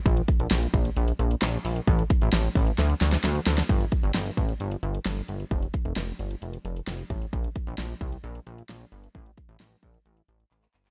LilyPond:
<<
  \new Staff \with { instrumentName = "Analog synth bass" } { \clef bass \time 4/4 \key g \minor \tempo 4 = 132 bes,,8 r16 bes,,16 bes,,8 bes,,8 bes,,8 bes,,8 bes,,8 bes,,8 | a,,8 r16 a,,16 a,,8 a,,8 d,8 d,8 d,8 d,8 | g,,8 r16 g,,16 g,,8 a,,8 g,,8 g,,8 g,,8 g,,8 | f,,8 r16 f,,16 f,,8 g,,8 f,,8 f,,8 f,,8 a,,8 |
bes,,8 r16 bes,,16 bes,,8 c,8 bes,,8 bes,,8 bes,,8 g,,8 | a,,8 r16 a,,16 a,,8 bes,,8 a,,8 a,,8 a,,8 g,,8 | }
  \new DrumStaff \with { instrumentName = "Drums" } \drummode { \time 4/4 <hh bd>16 hh16 <hh bd>16 hh16 <hh sn>16 hh16 <hh bd>16 hh16 hh16 hh16 hh16 hh16 <hc hh sn>16 hh16 hho16 hh16 | <hh bd>16 hh16 <hh bd>16 hh16 <hh sn>16 hh16 <hho bd>16 hh16 <hh sn>16 hh16 <hh sn>16 <hh sn>16 <hh sn>16 hh16 <hho sn>16 <hh sn>16 | <hh bd>16 hh16 <hh bd>16 hh16 <hh sn>16 hh16 <hh bd>16 hh16 hh16 hh16 hh16 hh16 <hh sn>16 hh16 hh16 hh16 | <hh bd>16 hh16 <hh bd>16 hh16 <hh sn>16 hh16 hh16 hh16 hh16 hh16 hh16 hh16 <hh sn>16 hh16 <hh bd>16 hh16 |
<hh bd>16 hh16 <hh bd>16 hh16 <hh sn>16 hh16 <hh bd>16 hh16 hh16 hh16 hh16 hh16 <hh sn>16 hh16 hh16 hh16 | <hh bd>16 hh16 <hh bd>16 hh16 <hh sn>16 hh16 <hh bd>16 hh16 hh16 hh16 hh16 hh16 <hc hh>16 <hc hh>16 <hc hh>16 <hc hh>16 | }
>>